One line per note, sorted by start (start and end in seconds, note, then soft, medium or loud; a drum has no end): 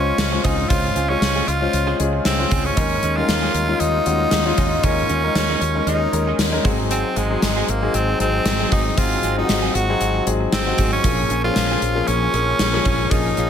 0.00 0.11 C#2 medium
0.00 0.31 G#3 medium
0.00 0.32 C#4 medium
0.00 0.40 C#4 medium
0.00 0.32 F4 medium
0.00 0.33 C5 medium
0.00 1.10 C#5 medium
0.07 muted clean electric guitar stroke soft
0.18 0.37 C#2 medium
0.18 muted clean electric guitar stroke soft
0.18 snare loud
0.18 closed hi-hat medium
0.31 0.64 G#3 medium
0.31 0.64 C#4 medium
0.31 0.64 F4 medium
0.31 0.64 C5 medium
0.31 muted clean electric guitar stroke soft
0.44 0.63 C#2 medium
0.44 0.62 C4 medium
0.44 0.70 D#4 medium
0.44 0.58 F4 medium
0.44 0.57 G#4 medium
0.44 kick medium
0.44 closed hi-hat medium
0.58 muted clean electric guitar stroke soft
0.69 0.89 C#2 loud
0.69 1.03 G#3 medium
0.69 0.87 C4 medium
0.69 1.03 C#4 medium
0.69 1.11 F4 loud
0.69 1.03 F4 medium
0.69 0.88 F4 medium
0.69 0.88 G#4 medium
0.69 1.03 C5 medium
0.69 kick loud
0.69 closed hi-hat medium
0.95 1.14 C#2 medium
0.95 1.10 C4 medium
0.95 1.09 F4 medium
0.95 1.08 G#4 medium
0.95 closed hi-hat medium
1.09 1.52 G#3 medium
1.09 1.20 C4 soft
1.09 1.49 C#4 medium
1.09 1.52 C#4 medium
1.09 1.53 F4 medium
1.09 1.21 F4 medium
1.09 1.21 G#4 medium
1.09 1.53 C#5 medium
1.21 1.40 C#2 medium
1.21 snare loud
1.21 closed hi-hat medium
1.36 1.46 C4 medium
1.36 1.47 F4 medium
1.36 1.48 G#4 medium
1.47 1.66 C#2 medium
1.47 2.00 F4 medium
1.47 muted clean electric guitar stroke soft
1.47 closed hi-hat medium
1.61 1.93 G#3 medium
1.61 1.94 C#4 medium
1.61 1.94 F4 medium
1.61 1.94 C5 medium
1.61 muted clean electric guitar stroke soft
1.73 1.92 C#2 medium
1.73 muted clean electric guitar stroke soft
1.73 closed hi-hat medium
1.87 1.98 C4 medium
1.87 1.98 F4 medium
1.87 1.99 G#4 medium
1.99 2.18 C#2 medium
1.99 2.32 G#3 medium
1.99 2.33 C#4 medium
1.99 2.33 F4 medium
1.99 2.33 G#4 medium
1.99 muted clean electric guitar stroke soft
1.99 closed hi-hat medium
2.13 muted clean electric guitar stroke soft
2.24 2.44 C#2 medium
2.24 2.67 C4 medium
2.24 muted clean electric guitar stroke soft
2.24 snare loud
2.24 closed hi-hat medium
2.39 2.71 G#3 medium
2.39 2.71 C#4 medium
2.39 2.71 F4 medium
2.39 2.71 C5 medium
2.39 muted clean electric guitar stroke soft
2.51 2.70 C#2 medium
2.51 2.68 C4 medium
2.51 2.65 F4 medium
2.51 2.64 G#4 medium
2.51 kick medium
2.51 closed hi-hat medium
2.65 3.18 C#4 medium
2.65 muted clean electric guitar stroke soft
2.76 2.96 D#2 medium
2.76 3.10 G#3 medium
2.76 2.94 C#4 medium
2.76 3.10 C#4 medium
2.76 2.94 D#4 medium
2.76 3.10 D#4 medium
2.76 2.95 G#4 medium
2.76 3.10 A#4 medium
2.76 kick loud
2.76 closed hi-hat medium
3.02 3.21 D#2 medium
3.02 3.17 C#4 medium
3.02 3.16 D#4 medium
3.02 3.15 G#4 medium
3.02 closed hi-hat medium
3.16 3.22 G3 medium
3.16 3.59 C#4 medium
3.16 3.27 C#4 soft
3.16 3.28 D#4 medium
3.16 3.60 D#4 medium
3.16 3.82 F4 loud
3.16 3.28 G#4 medium
3.16 3.60 A#4 medium
3.23 3.62 G#3 medium
3.28 3.47 D#2 medium
3.28 snare loud
3.28 closed hi-hat medium
3.42 3.53 C#4 medium
3.42 3.53 D#4 medium
3.42 3.54 G#4 medium
3.54 3.73 D#2 medium
3.54 closed hi-hat medium
3.68 4.00 G#3 medium
3.68 4.00 C#4 medium
3.68 4.00 D#4 medium
3.68 4.01 F4 medium
3.68 muted clean electric guitar stroke soft
3.80 3.99 D#2 loud
3.80 4.86 D#4 loud
3.80 muted clean electric guitar stroke soft
3.80 closed hi-hat medium
3.94 muted clean electric guitar stroke soft
4.05 4.25 D#2 medium
4.05 4.39 G#3 medium
4.05 4.39 C#4 medium
4.05 4.39 D#4 medium
4.05 4.40 F#4 medium
4.05 closed hi-hat medium
4.20 muted clean electric guitar stroke soft
4.31 4.51 D#2 medium
4.31 muted clean electric guitar stroke soft
4.31 snare loud
4.31 closed hi-hat medium
4.45 4.78 G#3 medium
4.45 4.78 C#4 medium
4.45 4.78 D#4 medium
4.45 4.78 F4 medium
4.45 muted clean electric guitar stroke soft
4.57 4.77 D#2 medium
4.57 4.75 C#4 medium
4.57 4.72 D#4 medium
4.57 4.71 G#4 medium
4.57 kick medium
4.57 closed hi-hat medium
4.72 muted clean electric guitar stroke soft
4.83 5.02 D#2 medium
4.83 5.16 G#3 medium
4.83 5.01 C#4 medium
4.83 5.17 C#4 medium
4.83 5.87 C#4 loud
4.83 5.17 D#4 medium
4.83 5.01 D#4 medium
4.83 5.02 G#4 medium
4.83 5.17 A#4 medium
4.83 kick loud
4.83 closed hi-hat medium
5.09 5.28 D#2 medium
5.09 5.24 C#4 medium
5.09 5.24 D#4 medium
5.09 5.23 G#4 medium
5.09 closed hi-hat medium
5.23 5.66 G#3 medium
5.23 5.66 C#4 medium
5.23 5.34 C#4 soft
5.23 5.66 D#4 medium
5.23 5.35 D#4 soft
5.23 5.35 G#4 medium
5.23 5.66 A#4 medium
5.35 5.54 D#2 medium
5.35 muted clean electric guitar stroke soft
5.35 snare loud
5.35 closed hi-hat medium
5.49 5.60 C#4 medium
5.49 5.61 D#4 medium
5.49 5.61 G#4 medium
5.61 5.80 D#2 medium
5.61 muted clean electric guitar stroke soft
5.61 closed hi-hat medium
5.75 6.07 G#3 medium
5.75 6.07 C#4 medium
5.75 6.08 D#4 medium
5.75 6.08 A#4 medium
5.75 muted clean electric guitar stroke soft
5.87 6.05 D#2 medium
5.87 6.05 C#4 medium
5.87 6.02 D#4 medium
5.87 6.36 D#4 medium
5.87 6.00 G#4 medium
5.87 closed hi-hat medium
6.02 muted clean electric guitar stroke soft
6.12 6.32 D#2 medium
6.12 6.46 G#3 medium
6.12 6.46 C#4 medium
6.12 6.46 D#4 medium
6.12 6.46 A#4 medium
6.12 muted clean electric guitar stroke soft
6.12 closed hi-hat medium
6.27 6.38 C#4 medium
6.27 6.39 D#4 medium
6.27 6.39 G#4 medium
6.38 6.57 D#2 medium
6.38 muted clean electric guitar stroke soft
6.38 snare medium
6.38 closed hi-hat medium
6.52 6.64 G#3 medium
6.52 6.65 C#4 medium
6.52 6.63 D#4 medium
6.52 6.65 A#4 medium
6.52 muted clean electric guitar stroke soft
6.64 7.02 G#1 medium
6.64 7.19 F#3 medium
6.64 7.19 C4 medium
6.64 6.82 C4 medium
6.64 7.19 D#4 medium
6.64 6.79 F#4 medium
6.64 7.19 G#4 medium
6.64 6.78 G#4 medium
6.64 kick medium
6.64 closed hi-hat medium
6.79 muted clean electric guitar stroke soft
6.91 7.08 C4 medium
6.91 7.19 C4 medium
6.91 7.08 F#4 medium
6.91 7.09 G#4 medium
6.91 closed hi-hat medium
7.16 7.35 G#1 medium
7.16 7.71 G#3 medium
7.16 7.30 C4 medium
7.16 7.30 F#4 medium
7.16 7.29 G#4 medium
7.16 closed hi-hat medium
7.30 7.73 F#3 medium
7.30 7.73 C4 medium
7.30 7.41 C4 soft
7.30 7.73 D#4 medium
7.30 7.42 F#4 medium
7.30 7.42 G#4 medium
7.30 7.73 G#4 medium
7.42 7.61 G#1 medium
7.42 muted clean electric guitar stroke soft
7.42 snare loud
7.42 closed hi-hat medium
7.56 7.67 C4 medium
7.56 7.67 F#4 medium
7.56 7.68 G#4 medium
7.68 7.87 G#1 medium
7.68 7.96 A#3 medium
7.68 muted clean electric guitar stroke soft
7.68 closed hi-hat medium
7.82 8.14 F#3 medium
7.82 8.14 C4 medium
7.82 8.14 D#4 medium
7.82 8.14 G#4 medium
7.82 muted clean electric guitar stroke soft
7.94 8.13 G#1 medium
7.94 8.20 C4 medium
7.94 muted clean electric guitar stroke soft
7.94 closed hi-hat medium
8.08 muted clean electric guitar stroke soft
8.19 8.39 G#1 medium
8.19 8.52 F#3 medium
8.19 8.53 C4 medium
8.19 8.69 C4 medium
8.19 8.53 D#4 medium
8.19 8.53 G#4 medium
8.19 closed hi-hat medium
8.34 muted clean electric guitar stroke soft
8.45 8.64 G#1 medium
8.45 snare loud
8.45 closed hi-hat medium
8.59 8.92 F#3 medium
8.59 8.92 C4 medium
8.59 8.92 D#4 medium
8.59 8.92 G#4 medium
8.59 muted clean electric guitar stroke soft
8.71 8.90 G#1 medium
8.71 8.89 C4 medium
8.71 9.00 D#4 loud
8.71 8.86 F#4 medium
8.71 8.84 G#4 medium
8.71 kick medium
8.71 closed hi-hat medium
8.86 muted clean electric guitar stroke soft
8.97 9.16 G#1 medium
8.97 9.30 F#3 medium
8.97 9.15 C4 medium
8.97 9.31 C4 medium
8.97 9.31 D#4 medium
8.97 9.38 F4 loud
8.97 9.15 F#4 medium
8.97 9.31 G#4 medium
8.97 9.16 G#4 medium
8.97 kick loud
8.97 closed hi-hat medium
9.23 9.42 G#1 medium
9.23 9.37 C4 medium
9.23 9.37 F#4 medium
9.23 9.36 G#4 medium
9.23 closed hi-hat medium
9.37 9.80 F#3 medium
9.37 9.80 C4 medium
9.37 9.48 C4 medium
9.37 9.80 D#4 medium
9.37 9.76 D#4 medium
9.37 9.44 F4 medium
9.37 9.48 F#4 medium
9.37 9.49 G#4 medium
9.45 9.84 F#4 medium
9.49 9.68 G#1 medium
9.49 muted clean electric guitar stroke soft
9.49 snare loud
9.49 closed hi-hat medium
9.62 9.73 C4 medium
9.62 9.74 F#4 medium
9.62 9.75 G#4 medium
9.75 9.94 G#1 loud
9.75 10.27 F#4 medium
9.75 muted clean electric guitar stroke soft
9.75 closed hi-hat medium
9.89 10.21 F#3 medium
9.89 10.21 C4 medium
9.89 10.21 D#4 medium
9.89 10.22 G#4 medium
9.89 muted clean electric guitar stroke soft
10.01 10.19 G#1 medium
10.01 muted clean electric guitar stroke soft
10.01 closed hi-hat medium
10.14 muted clean electric guitar stroke soft
10.26 10.45 G#1 medium
10.26 10.60 F#3 medium
10.26 10.60 C4 medium
10.26 10.60 D#4 medium
10.26 10.60 G#4 medium
10.26 closed hi-hat medium
10.41 muted clean electric guitar stroke soft
10.52 10.71 G#1 medium
10.52 10.90 C4 medium
10.52 muted clean electric guitar stroke soft
10.52 snare loud
10.52 closed hi-hat medium
10.66 10.98 F#3 medium
10.66 10.98 C4 medium
10.66 10.99 D#4 medium
10.66 10.99 F#4 medium
10.66 muted clean electric guitar stroke soft
10.78 10.97 G#1 medium
10.78 10.96 C4 medium
10.78 10.92 F#4 medium
10.78 10.91 G#4 medium
10.78 kick medium
10.78 closed hi-hat medium
10.92 11.41 C#4 medium
10.92 muted clean electric guitar stroke soft
11.04 11.23 A#1 loud
11.04 11.37 F3 medium
11.04 11.38 A#3 medium
11.04 11.21 C#4 medium
11.04 11.38 C#4 medium
11.04 11.22 F4 medium
11.04 11.38 G#4 medium
11.04 11.22 G#4 medium
11.04 kick loud
11.04 closed hi-hat medium
11.30 11.49 A#1 medium
11.30 11.44 C#4 medium
11.30 11.44 F4 medium
11.30 11.43 G#4 medium
11.30 closed hi-hat medium
11.44 11.87 F3 medium
11.44 11.87 A#3 medium
11.44 11.50 C4 medium
11.44 11.55 C#4 medium
11.44 12.09 F4 loud
11.44 11.56 F4 medium
11.44 11.56 G#4 medium
11.44 11.87 G#4 medium
11.51 11.90 C#4 medium
11.56 11.75 A#1 loud
11.56 snare loud
11.56 closed hi-hat medium
11.71 11.81 C#4 medium
11.71 11.82 F4 medium
11.71 11.82 G#4 medium
11.82 12.01 A#1 medium
11.82 closed hi-hat medium
11.95 12.28 F3 medium
11.95 12.28 A#3 medium
11.95 12.28 C#4 medium
11.95 12.28 G#4 medium
11.95 muted clean electric guitar stroke soft
12.08 12.27 A#1 medium
12.08 13.12 C#4 loud
12.08 muted clean electric guitar stroke soft
12.08 closed hi-hat medium
12.23 muted clean electric guitar stroke soft
12.33 12.52 A#1 medium
12.33 12.67 F3 medium
12.33 12.67 A#3 medium
12.33 12.67 C#4 medium
12.33 12.67 G#4 medium
12.33 closed hi-hat medium
12.49 muted clean electric guitar stroke soft
12.59 12.78 A#1 loud
12.59 muted clean electric guitar stroke soft
12.59 snare loud
12.59 closed hi-hat medium
12.73 13.05 F3 medium
12.73 13.05 A#3 medium
12.73 13.06 C#4 medium
12.73 13.06 G#4 medium
12.73 muted clean electric guitar stroke soft
12.85 13.04 A#1 loud
12.85 13.03 C#4 medium
12.85 13.00 F4 medium
12.85 12.99 G#4 medium
12.85 kick medium
12.85 closed hi-hat medium
13.00 muted clean electric guitar stroke soft
13.10 13.30 A#1 loud
13.10 13.44 F3 medium
13.10 13.44 A#3 medium
13.10 13.44 C#4 medium
13.10 13.29 C#4 medium
13.10 13.50 D#4 loud
13.10 13.30 F4 medium
13.10 13.45 G#4 medium
13.10 13.30 G#4 medium
13.10 kick loud
13.10 closed hi-hat medium
13.37 13.50 A#1 medium
13.37 13.50 C#4 medium
13.37 13.50 F4 medium
13.37 13.50 G#4 medium
13.37 closed hi-hat medium